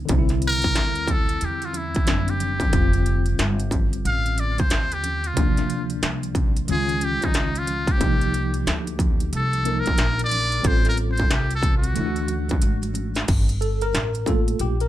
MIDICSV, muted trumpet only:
0, 0, Header, 1, 2, 480
1, 0, Start_track
1, 0, Tempo, 659341
1, 69, Time_signature, 4, 2, 24, 8
1, 10835, End_track
2, 0, Start_track
2, 0, Title_t, "Muted trumpet"
2, 0, Program_c, 0, 59
2, 344, Note_on_c, 0, 70, 116
2, 811, Note_on_c, 0, 69, 101
2, 822, Note_off_c, 0, 70, 0
2, 1055, Note_on_c, 0, 67, 93
2, 1066, Note_off_c, 0, 69, 0
2, 1203, Note_on_c, 0, 65, 83
2, 1214, Note_off_c, 0, 67, 0
2, 1291, Note_on_c, 0, 64, 88
2, 1302, Note_off_c, 0, 65, 0
2, 1674, Note_on_c, 0, 67, 93
2, 1685, Note_off_c, 0, 64, 0
2, 2387, Note_off_c, 0, 67, 0
2, 2960, Note_on_c, 0, 77, 98
2, 3202, Note_on_c, 0, 74, 92
2, 3213, Note_off_c, 0, 77, 0
2, 3349, Note_on_c, 0, 72, 97
2, 3360, Note_off_c, 0, 74, 0
2, 3595, Note_on_c, 0, 67, 92
2, 3606, Note_off_c, 0, 72, 0
2, 3838, Note_on_c, 0, 65, 83
2, 3849, Note_off_c, 0, 67, 0
2, 4309, Note_off_c, 0, 65, 0
2, 4887, Note_on_c, 0, 68, 106
2, 5130, Note_on_c, 0, 67, 102
2, 5141, Note_off_c, 0, 68, 0
2, 5277, Note_on_c, 0, 63, 91
2, 5288, Note_off_c, 0, 67, 0
2, 5521, Note_on_c, 0, 65, 98
2, 5532, Note_off_c, 0, 63, 0
2, 5763, Note_on_c, 0, 67, 91
2, 5774, Note_off_c, 0, 65, 0
2, 6231, Note_off_c, 0, 67, 0
2, 6816, Note_on_c, 0, 69, 96
2, 7132, Note_on_c, 0, 70, 100
2, 7143, Note_off_c, 0, 69, 0
2, 7440, Note_off_c, 0, 70, 0
2, 7454, Note_on_c, 0, 74, 117
2, 7767, Note_on_c, 0, 72, 105
2, 7778, Note_off_c, 0, 74, 0
2, 7918, Note_off_c, 0, 72, 0
2, 7927, Note_on_c, 0, 70, 87
2, 7995, Note_off_c, 0, 70, 0
2, 8091, Note_on_c, 0, 72, 91
2, 8247, Note_on_c, 0, 67, 89
2, 8258, Note_off_c, 0, 72, 0
2, 8398, Note_off_c, 0, 67, 0
2, 8410, Note_on_c, 0, 69, 95
2, 8549, Note_off_c, 0, 69, 0
2, 8571, Note_on_c, 0, 66, 81
2, 9011, Note_off_c, 0, 66, 0
2, 10835, End_track
0, 0, End_of_file